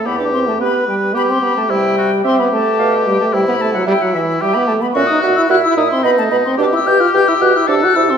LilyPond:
<<
  \new Staff \with { instrumentName = "Flute" } { \time 3/4 \key g \major \tempo 4 = 110 b''16 d'''16 c'''16 a''16 b''8 g''8 b''16 c'''16 b''16 a''16 | g''4 c'''16 b''16 a''4 g''16 a''16 | g''16 b''16 a''16 fis''16 g''16 fis''16 e''8 g''16 b''16 a''16 b''16 | cis'''16 dis'''16 fis'''16 e'''16 fis'''16 e'''16 dis'''16 c'''16 b''16 a''16 b''16 c'''16 |
d'''16 e'''16 g'''16 f'''16 g'''16 e'''16 fis'''16 e'''16 d'''16 fis'''16 e'''16 c'''16 | }
  \new Staff \with { instrumentName = "Clarinet" } { \time 3/4 \key g \major r4 g'4 g'4 | r4 e''4 f''4 | r4 e''4 e''4 | e''8 e''8 e''8 e''8 dis''8 dis''8 |
g'8 g'8 g'8 g'8 g'8 g'8 | }
  \new Staff \with { instrumentName = "Oboe" } { \time 3/4 \key g \major g'4 b'4 g'4 | e'8 fis'8 g'2 | e'4 e'4 g'8 r8 | fis'4 e'4 dis'4 |
g'2 a'4 | }
  \new Staff \with { instrumentName = "French horn" } { \time 3/4 \key g \major b16 d'16 c'16 a16 b8 g8 b16 c'16 b16 a16 | g4 c'16 b16 a4 g16 a16 | g16 b16 a16 fis16 g16 fis16 e8 g16 b16 a16 b16 | cis'16 dis'16 fis'16 e'16 fis'16 e'16 dis'16 c'16 b16 a16 b16 c'16 |
d'16 e'16 g'16 f'16 g'16 e'16 fis'16 e'16 d'16 fis'16 e'16 c'16 | }
  \new Staff \with { instrumentName = "Bassoon" } { \clef bass \time 3/4 \key g \major e,4 r2 | c4 r4 b,4 | c4 r2 | ais,8 ais,8 ais,8 ais,8 b,8 b,8 |
b,8 b,8 b,8 b,8 c8 c8 | }
>>